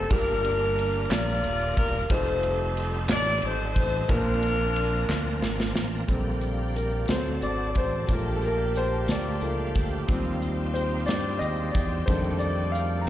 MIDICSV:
0, 0, Header, 1, 7, 480
1, 0, Start_track
1, 0, Key_signature, -2, "major"
1, 0, Tempo, 665188
1, 76, Time_signature, 6, 3, 24, 8
1, 9448, End_track
2, 0, Start_track
2, 0, Title_t, "String section"
2, 0, Program_c, 0, 48
2, 4392, Note_on_c, 0, 79, 63
2, 4395, Note_on_c, 0, 70, 57
2, 4397, Note_on_c, 0, 74, 50
2, 4397, Note_on_c, 0, 77, 55
2, 5107, Note_off_c, 0, 79, 0
2, 5108, Note_off_c, 0, 70, 0
2, 5109, Note_off_c, 0, 77, 0
2, 5111, Note_on_c, 0, 72, 56
2, 5112, Note_on_c, 0, 81, 65
2, 5113, Note_on_c, 0, 78, 51
2, 5823, Note_off_c, 0, 74, 0
2, 5827, Note_off_c, 0, 72, 0
2, 5828, Note_off_c, 0, 78, 0
2, 5836, Note_on_c, 0, 67, 61
2, 5836, Note_on_c, 0, 79, 51
2, 5842, Note_on_c, 0, 77, 56
2, 7253, Note_off_c, 0, 81, 0
2, 7262, Note_off_c, 0, 67, 0
2, 7262, Note_off_c, 0, 79, 0
2, 7275, Note_on_c, 0, 79, 68
2, 7277, Note_on_c, 0, 72, 62
2, 8690, Note_off_c, 0, 77, 0
2, 8702, Note_off_c, 0, 72, 0
2, 8708, Note_on_c, 0, 74, 64
2, 8710, Note_on_c, 0, 69, 54
2, 9413, Note_off_c, 0, 79, 0
2, 9424, Note_on_c, 0, 65, 59
2, 9425, Note_off_c, 0, 69, 0
2, 9425, Note_on_c, 0, 80, 65
2, 9448, Note_off_c, 0, 65, 0
2, 9448, Note_off_c, 0, 74, 0
2, 9448, Note_off_c, 0, 80, 0
2, 9448, End_track
3, 0, Start_track
3, 0, Title_t, "Saxophone section"
3, 0, Program_c, 1, 65
3, 68, Note_on_c, 1, 70, 102
3, 82, Note_on_c, 1, 62, 73
3, 85, Note_on_c, 1, 65, 66
3, 770, Note_off_c, 1, 62, 0
3, 771, Note_off_c, 1, 65, 0
3, 786, Note_on_c, 1, 74, 113
3, 792, Note_off_c, 1, 70, 0
3, 809, Note_on_c, 1, 65, 88
3, 814, Note_on_c, 1, 70, 85
3, 1262, Note_off_c, 1, 70, 0
3, 1270, Note_on_c, 1, 70, 101
3, 1271, Note_off_c, 1, 74, 0
3, 1493, Note_off_c, 1, 65, 0
3, 1496, Note_off_c, 1, 70, 0
3, 1511, Note_on_c, 1, 72, 94
3, 1520, Note_on_c, 1, 63, 73
3, 1523, Note_on_c, 1, 69, 74
3, 1964, Note_off_c, 1, 72, 0
3, 2209, Note_off_c, 1, 63, 0
3, 2210, Note_off_c, 1, 69, 0
3, 2249, Note_on_c, 1, 74, 116
3, 2466, Note_off_c, 1, 74, 0
3, 2477, Note_on_c, 1, 69, 79
3, 2482, Note_on_c, 1, 63, 78
3, 2486, Note_on_c, 1, 72, 101
3, 2927, Note_off_c, 1, 69, 0
3, 2930, Note_off_c, 1, 63, 0
3, 2954, Note_on_c, 1, 62, 77
3, 2956, Note_on_c, 1, 70, 96
3, 2958, Note_on_c, 1, 65, 69
3, 2961, Note_off_c, 1, 72, 0
3, 4126, Note_off_c, 1, 62, 0
3, 4127, Note_off_c, 1, 70, 0
3, 4128, Note_off_c, 1, 65, 0
3, 9448, End_track
4, 0, Start_track
4, 0, Title_t, "Upright piano"
4, 0, Program_c, 2, 0
4, 0, Control_c, 2, 64, 127
4, 0, Note_on_c, 2, 51, 56
4, 0, Note_on_c, 2, 58, 58
4, 0, Note_on_c, 2, 60, 52
4, 0, Note_on_c, 2, 63, 52
4, 0, Note_on_c, 2, 67, 52
4, 65, Note_on_c, 2, 62, 59
4, 69, Note_off_c, 2, 58, 0
4, 69, Note_on_c, 2, 58, 62
4, 73, Note_on_c, 2, 65, 62
4, 74, Note_on_c, 2, 43, 59
4, 78, Note_on_c, 2, 69, 56
4, 81, Note_off_c, 2, 67, 0
4, 81, Note_on_c, 2, 67, 59
4, 86, Note_off_c, 2, 51, 0
4, 86, Control_c, 2, 64, 0
4, 87, Note_off_c, 2, 63, 0
4, 92, Note_off_c, 2, 60, 0
4, 124, Note_off_c, 2, 69, 0
4, 129, Note_on_c, 2, 70, 77
4, 215, Control_c, 2, 64, 127
4, 766, Note_off_c, 2, 43, 0
4, 1481, Note_off_c, 2, 62, 0
4, 1483, Note_off_c, 2, 58, 0
4, 1485, Note_off_c, 2, 65, 0
4, 1490, Note_off_c, 2, 67, 0
4, 1513, Note_on_c, 2, 57, 71
4, 1514, Note_off_c, 2, 70, 0
4, 1516, Note_on_c, 2, 63, 62
4, 1522, Note_on_c, 2, 65, 55
4, 1523, Note_on_c, 2, 67, 53
4, 1525, Control_c, 2, 64, 0
4, 1528, Note_on_c, 2, 72, 64
4, 1633, Control_c, 2, 64, 127
4, 2926, Note_off_c, 2, 57, 0
4, 2927, Note_off_c, 2, 63, 0
4, 2930, Note_off_c, 2, 65, 0
4, 2930, Note_off_c, 2, 67, 0
4, 2933, Note_off_c, 2, 72, 0
4, 2944, Note_on_c, 2, 58, 60
4, 2947, Note_on_c, 2, 62, 64
4, 2951, Note_on_c, 2, 46, 64
4, 2951, Note_on_c, 2, 65, 60
4, 2956, Note_on_c, 2, 81, 57
4, 2961, Note_on_c, 2, 71, 55
4, 2965, Control_c, 2, 64, 0
4, 3005, Note_off_c, 2, 71, 0
4, 3007, Note_on_c, 2, 72, 72
4, 3082, Control_c, 2, 64, 127
4, 3645, Note_off_c, 2, 46, 0
4, 4361, Note_off_c, 2, 58, 0
4, 4363, Note_off_c, 2, 62, 0
4, 4365, Note_off_c, 2, 65, 0
4, 4367, Note_off_c, 2, 81, 0
4, 4386, Note_on_c, 2, 50, 47
4, 4392, Note_on_c, 2, 55, 40
4, 4393, Note_off_c, 2, 72, 0
4, 4397, Note_on_c, 2, 60, 49
4, 4404, Control_c, 2, 64, 0
4, 4546, Control_c, 2, 64, 127
4, 4880, Note_on_c, 2, 70, 70
4, 5082, Note_off_c, 2, 50, 0
4, 5085, Note_off_c, 2, 55, 0
4, 5088, Note_off_c, 2, 60, 0
4, 5101, Note_off_c, 2, 70, 0
4, 5110, Note_on_c, 2, 54, 50
4, 5113, Note_on_c, 2, 57, 45
4, 5122, Note_on_c, 2, 60, 47
4, 5122, Note_on_c, 2, 72, 73
4, 5126, Control_c, 2, 64, 0
4, 5240, Control_c, 2, 64, 127
4, 5361, Note_on_c, 2, 74, 84
4, 5366, Note_off_c, 2, 72, 0
4, 5533, Note_off_c, 2, 74, 0
4, 5544, Note_on_c, 2, 74, 59
4, 5595, Note_off_c, 2, 74, 0
4, 5614, Note_on_c, 2, 72, 72
4, 5804, Note_off_c, 2, 54, 0
4, 5806, Note_off_c, 2, 57, 0
4, 5811, Note_off_c, 2, 60, 0
4, 5846, Control_c, 2, 64, 0
4, 5847, Note_on_c, 2, 53, 50
4, 5852, Note_off_c, 2, 72, 0
4, 5852, Note_on_c, 2, 57, 41
4, 5855, Note_on_c, 2, 58, 52
4, 5863, Note_on_c, 2, 70, 73
4, 5991, Control_c, 2, 64, 127
4, 6034, Note_on_c, 2, 69, 60
4, 6044, Note_off_c, 2, 70, 0
4, 6080, Note_off_c, 2, 69, 0
4, 6104, Note_on_c, 2, 70, 79
4, 6161, Note_off_c, 2, 53, 0
4, 6164, Note_off_c, 2, 57, 0
4, 6165, Note_off_c, 2, 58, 0
4, 6330, Note_on_c, 2, 72, 73
4, 6337, Note_off_c, 2, 70, 0
4, 6383, Note_off_c, 2, 72, 0
4, 6575, Note_on_c, 2, 74, 72
4, 6796, Note_on_c, 2, 53, 45
4, 6799, Note_on_c, 2, 57, 41
4, 6803, Note_on_c, 2, 58, 51
4, 7012, Note_off_c, 2, 53, 0
4, 7014, Note_off_c, 2, 57, 0
4, 7016, Note_off_c, 2, 58, 0
4, 7257, Note_off_c, 2, 74, 0
4, 7279, Note_on_c, 2, 53, 52
4, 7285, Note_on_c, 2, 55, 44
4, 7285, Note_on_c, 2, 60, 55
4, 7287, Control_c, 2, 64, 0
4, 7415, Control_c, 2, 64, 127
4, 7749, Note_on_c, 2, 72, 72
4, 7969, Note_off_c, 2, 53, 0
4, 7972, Note_off_c, 2, 55, 0
4, 7972, Note_off_c, 2, 60, 0
4, 7981, Note_on_c, 2, 74, 86
4, 8000, Note_off_c, 2, 72, 0
4, 8218, Note_on_c, 2, 75, 76
4, 8236, Note_off_c, 2, 74, 0
4, 8450, Note_off_c, 2, 75, 0
4, 8455, Note_on_c, 2, 74, 69
4, 8701, Note_on_c, 2, 72, 73
4, 8710, Note_on_c, 2, 51, 49
4, 8713, Note_off_c, 2, 74, 0
4, 8714, Note_on_c, 2, 55, 45
4, 8716, Note_on_c, 2, 57, 46
4, 8718, Note_on_c, 2, 62, 55
4, 8726, Control_c, 2, 64, 0
4, 8859, Control_c, 2, 64, 127
4, 8940, Note_on_c, 2, 74, 77
4, 8956, Note_off_c, 2, 72, 0
4, 8996, Note_off_c, 2, 74, 0
4, 9032, Note_off_c, 2, 51, 0
4, 9034, Note_off_c, 2, 55, 0
4, 9035, Note_off_c, 2, 57, 0
4, 9036, Note_off_c, 2, 62, 0
4, 9178, Note_on_c, 2, 77, 82
4, 9382, Note_off_c, 2, 77, 0
4, 9390, Note_on_c, 2, 82, 60
4, 9438, Note_off_c, 2, 82, 0
4, 9445, Control_c, 2, 64, 0
4, 9448, End_track
5, 0, Start_track
5, 0, Title_t, "Tonewheel organ"
5, 0, Program_c, 3, 16
5, 69, Note_on_c, 3, 58, 66
5, 72, Note_on_c, 3, 65, 59
5, 74, Note_on_c, 3, 62, 60
5, 78, Note_on_c, 3, 70, 73
5, 79, Note_on_c, 3, 55, 64
5, 1484, Note_off_c, 3, 58, 0
5, 1485, Note_off_c, 3, 65, 0
5, 1486, Note_off_c, 3, 62, 0
5, 1488, Note_off_c, 3, 70, 0
5, 1489, Note_off_c, 3, 55, 0
5, 1511, Note_on_c, 3, 60, 63
5, 1514, Note_on_c, 3, 69, 75
5, 1515, Note_on_c, 3, 63, 65
5, 1516, Note_on_c, 3, 65, 59
5, 1517, Note_on_c, 3, 55, 63
5, 2925, Note_off_c, 3, 60, 0
5, 2926, Note_off_c, 3, 63, 0
5, 2926, Note_off_c, 3, 69, 0
5, 2927, Note_off_c, 3, 55, 0
5, 2927, Note_off_c, 3, 65, 0
5, 2943, Note_on_c, 3, 58, 56
5, 2945, Note_on_c, 3, 62, 59
5, 2946, Note_on_c, 3, 53, 68
5, 2948, Note_on_c, 3, 70, 78
5, 2949, Note_on_c, 3, 60, 57
5, 4361, Note_off_c, 3, 58, 0
5, 4361, Note_off_c, 3, 62, 0
5, 4362, Note_off_c, 3, 53, 0
5, 4363, Note_off_c, 3, 70, 0
5, 4364, Note_off_c, 3, 60, 0
5, 4381, Note_on_c, 3, 67, 71
5, 4386, Note_on_c, 3, 60, 49
5, 4387, Note_on_c, 3, 58, 57
5, 4389, Note_on_c, 3, 53, 63
5, 4431, Note_on_c, 3, 62, 64
5, 4438, Note_off_c, 3, 60, 0
5, 5096, Note_off_c, 3, 62, 0
5, 5099, Note_on_c, 3, 60, 49
5, 5101, Note_on_c, 3, 69, 63
5, 5102, Note_on_c, 3, 54, 58
5, 5105, Note_on_c, 3, 62, 49
5, 5109, Note_off_c, 3, 67, 0
5, 5112, Note_off_c, 3, 53, 0
5, 5112, Note_off_c, 3, 58, 0
5, 5815, Note_on_c, 3, 65, 51
5, 5817, Note_off_c, 3, 62, 0
5, 5818, Note_on_c, 3, 55, 50
5, 5825, Note_on_c, 3, 62, 52
5, 5826, Note_on_c, 3, 67, 49
5, 5828, Note_off_c, 3, 60, 0
5, 5829, Note_off_c, 3, 54, 0
5, 5829, Note_off_c, 3, 69, 0
5, 5858, Note_off_c, 3, 67, 0
5, 5867, Note_on_c, 3, 67, 63
5, 7237, Note_off_c, 3, 65, 0
5, 7239, Note_off_c, 3, 55, 0
5, 7242, Note_off_c, 3, 62, 0
5, 7258, Note_on_c, 3, 60, 66
5, 7263, Note_off_c, 3, 67, 0
5, 7263, Note_on_c, 3, 63, 67
5, 7269, Note_on_c, 3, 66, 62
5, 7272, Note_on_c, 3, 65, 69
5, 7309, Note_on_c, 3, 67, 82
5, 7320, Note_off_c, 3, 66, 0
5, 8678, Note_off_c, 3, 60, 0
5, 8680, Note_off_c, 3, 63, 0
5, 8685, Note_off_c, 3, 65, 0
5, 8704, Note_off_c, 3, 67, 0
5, 8715, Note_on_c, 3, 57, 54
5, 8719, Note_on_c, 3, 62, 51
5, 8722, Note_on_c, 3, 65, 52
5, 8725, Note_on_c, 3, 51, 55
5, 8762, Note_on_c, 3, 67, 72
5, 8766, Note_off_c, 3, 65, 0
5, 9435, Note_off_c, 3, 57, 0
5, 9437, Note_off_c, 3, 62, 0
5, 9440, Note_off_c, 3, 51, 0
5, 9448, Note_off_c, 3, 67, 0
5, 9448, End_track
6, 0, Start_track
6, 0, Title_t, "Fingered electric bass"
6, 0, Program_c, 4, 33
6, 73, Note_on_c, 4, 31, 105
6, 765, Note_off_c, 4, 31, 0
6, 789, Note_on_c, 4, 34, 97
6, 1013, Note_off_c, 4, 34, 0
6, 1031, Note_on_c, 4, 27, 92
6, 1254, Note_off_c, 4, 27, 0
6, 1279, Note_on_c, 4, 28, 81
6, 1498, Note_off_c, 4, 28, 0
6, 1512, Note_on_c, 4, 29, 96
6, 2205, Note_off_c, 4, 29, 0
6, 2223, Note_on_c, 4, 33, 103
6, 2449, Note_off_c, 4, 33, 0
6, 2470, Note_on_c, 4, 32, 89
6, 2694, Note_off_c, 4, 32, 0
6, 2712, Note_on_c, 4, 33, 88
6, 2935, Note_off_c, 4, 33, 0
6, 2953, Note_on_c, 4, 34, 98
6, 3646, Note_off_c, 4, 34, 0
6, 3672, Note_on_c, 4, 38, 97
6, 3895, Note_off_c, 4, 38, 0
6, 3903, Note_on_c, 4, 32, 98
6, 4130, Note_off_c, 4, 32, 0
6, 4150, Note_on_c, 4, 33, 72
6, 4374, Note_off_c, 4, 33, 0
6, 4390, Note_on_c, 4, 34, 88
6, 5084, Note_off_c, 4, 34, 0
6, 5114, Note_on_c, 4, 38, 83
6, 5336, Note_off_c, 4, 38, 0
6, 5356, Note_on_c, 4, 32, 85
6, 5577, Note_off_c, 4, 32, 0
6, 5592, Note_on_c, 4, 33, 70
6, 5815, Note_off_c, 4, 33, 0
6, 5836, Note_on_c, 4, 34, 79
6, 6528, Note_off_c, 4, 34, 0
6, 6552, Note_on_c, 4, 38, 89
6, 6775, Note_off_c, 4, 38, 0
6, 6790, Note_on_c, 4, 37, 72
6, 7014, Note_off_c, 4, 37, 0
6, 7038, Note_on_c, 4, 38, 72
6, 7258, Note_off_c, 4, 38, 0
6, 7280, Note_on_c, 4, 39, 96
6, 7969, Note_off_c, 4, 39, 0
6, 7994, Note_on_c, 4, 43, 81
6, 8216, Note_off_c, 4, 43, 0
6, 8233, Note_on_c, 4, 39, 77
6, 8455, Note_off_c, 4, 39, 0
6, 8477, Note_on_c, 4, 40, 77
6, 8697, Note_off_c, 4, 40, 0
6, 8714, Note_on_c, 4, 41, 96
6, 9423, Note_on_c, 4, 34, 85
6, 9434, Note_off_c, 4, 41, 0
6, 9448, Note_off_c, 4, 34, 0
6, 9448, End_track
7, 0, Start_track
7, 0, Title_t, "Drums"
7, 75, Note_on_c, 9, 51, 65
7, 78, Note_on_c, 9, 36, 102
7, 147, Note_off_c, 9, 51, 0
7, 150, Note_off_c, 9, 36, 0
7, 321, Note_on_c, 9, 51, 42
7, 393, Note_off_c, 9, 51, 0
7, 567, Note_on_c, 9, 51, 63
7, 639, Note_off_c, 9, 51, 0
7, 800, Note_on_c, 9, 51, 72
7, 803, Note_on_c, 9, 39, 102
7, 806, Note_on_c, 9, 38, 117
7, 872, Note_off_c, 9, 51, 0
7, 875, Note_off_c, 9, 39, 0
7, 879, Note_off_c, 9, 38, 0
7, 1038, Note_on_c, 9, 51, 42
7, 1110, Note_off_c, 9, 51, 0
7, 1278, Note_on_c, 9, 36, 91
7, 1280, Note_on_c, 9, 51, 60
7, 1350, Note_off_c, 9, 36, 0
7, 1352, Note_off_c, 9, 51, 0
7, 1514, Note_on_c, 9, 51, 65
7, 1515, Note_on_c, 9, 36, 104
7, 1586, Note_off_c, 9, 51, 0
7, 1588, Note_off_c, 9, 36, 0
7, 1754, Note_on_c, 9, 51, 40
7, 1827, Note_off_c, 9, 51, 0
7, 1998, Note_on_c, 9, 51, 55
7, 2071, Note_off_c, 9, 51, 0
7, 2226, Note_on_c, 9, 51, 74
7, 2231, Note_on_c, 9, 39, 97
7, 2233, Note_on_c, 9, 38, 114
7, 2298, Note_off_c, 9, 51, 0
7, 2303, Note_off_c, 9, 39, 0
7, 2305, Note_off_c, 9, 38, 0
7, 2468, Note_on_c, 9, 51, 46
7, 2540, Note_off_c, 9, 51, 0
7, 2712, Note_on_c, 9, 51, 71
7, 2714, Note_on_c, 9, 36, 81
7, 2784, Note_off_c, 9, 51, 0
7, 2786, Note_off_c, 9, 36, 0
7, 2952, Note_on_c, 9, 51, 59
7, 2953, Note_on_c, 9, 36, 102
7, 3025, Note_off_c, 9, 36, 0
7, 3025, Note_off_c, 9, 51, 0
7, 3194, Note_on_c, 9, 51, 37
7, 3267, Note_off_c, 9, 51, 0
7, 3436, Note_on_c, 9, 51, 61
7, 3508, Note_off_c, 9, 51, 0
7, 3675, Note_on_c, 9, 38, 64
7, 3678, Note_on_c, 9, 39, 87
7, 3748, Note_off_c, 9, 38, 0
7, 3750, Note_off_c, 9, 39, 0
7, 3915, Note_on_c, 9, 38, 75
7, 3987, Note_off_c, 9, 38, 0
7, 4041, Note_on_c, 9, 38, 78
7, 4113, Note_off_c, 9, 38, 0
7, 4153, Note_on_c, 9, 38, 98
7, 4225, Note_off_c, 9, 38, 0
7, 4390, Note_on_c, 9, 42, 64
7, 4391, Note_on_c, 9, 36, 73
7, 4462, Note_off_c, 9, 42, 0
7, 4463, Note_off_c, 9, 36, 0
7, 4627, Note_on_c, 9, 42, 44
7, 4700, Note_off_c, 9, 42, 0
7, 4880, Note_on_c, 9, 42, 64
7, 4952, Note_off_c, 9, 42, 0
7, 5109, Note_on_c, 9, 42, 78
7, 5116, Note_on_c, 9, 38, 95
7, 5181, Note_off_c, 9, 42, 0
7, 5188, Note_off_c, 9, 38, 0
7, 5355, Note_on_c, 9, 42, 42
7, 5427, Note_off_c, 9, 42, 0
7, 5592, Note_on_c, 9, 42, 64
7, 5596, Note_on_c, 9, 36, 76
7, 5664, Note_off_c, 9, 42, 0
7, 5669, Note_off_c, 9, 36, 0
7, 5834, Note_on_c, 9, 42, 65
7, 5835, Note_on_c, 9, 36, 78
7, 5906, Note_off_c, 9, 42, 0
7, 5908, Note_off_c, 9, 36, 0
7, 6076, Note_on_c, 9, 42, 40
7, 6148, Note_off_c, 9, 42, 0
7, 6320, Note_on_c, 9, 42, 65
7, 6392, Note_off_c, 9, 42, 0
7, 6553, Note_on_c, 9, 42, 83
7, 6559, Note_on_c, 9, 38, 96
7, 6625, Note_off_c, 9, 42, 0
7, 6632, Note_off_c, 9, 38, 0
7, 6790, Note_on_c, 9, 42, 44
7, 6862, Note_off_c, 9, 42, 0
7, 7036, Note_on_c, 9, 42, 62
7, 7040, Note_on_c, 9, 36, 82
7, 7108, Note_off_c, 9, 42, 0
7, 7112, Note_off_c, 9, 36, 0
7, 7275, Note_on_c, 9, 42, 65
7, 7278, Note_on_c, 9, 36, 92
7, 7348, Note_off_c, 9, 42, 0
7, 7350, Note_off_c, 9, 36, 0
7, 7519, Note_on_c, 9, 42, 42
7, 7591, Note_off_c, 9, 42, 0
7, 7760, Note_on_c, 9, 42, 66
7, 7832, Note_off_c, 9, 42, 0
7, 7996, Note_on_c, 9, 42, 80
7, 8003, Note_on_c, 9, 38, 101
7, 8069, Note_off_c, 9, 42, 0
7, 8075, Note_off_c, 9, 38, 0
7, 8236, Note_on_c, 9, 42, 47
7, 8309, Note_off_c, 9, 42, 0
7, 8477, Note_on_c, 9, 42, 69
7, 8478, Note_on_c, 9, 36, 83
7, 8549, Note_off_c, 9, 42, 0
7, 8550, Note_off_c, 9, 36, 0
7, 8714, Note_on_c, 9, 42, 73
7, 8716, Note_on_c, 9, 36, 98
7, 8787, Note_off_c, 9, 42, 0
7, 8788, Note_off_c, 9, 36, 0
7, 8950, Note_on_c, 9, 42, 43
7, 9023, Note_off_c, 9, 42, 0
7, 9200, Note_on_c, 9, 42, 68
7, 9273, Note_off_c, 9, 42, 0
7, 9448, End_track
0, 0, End_of_file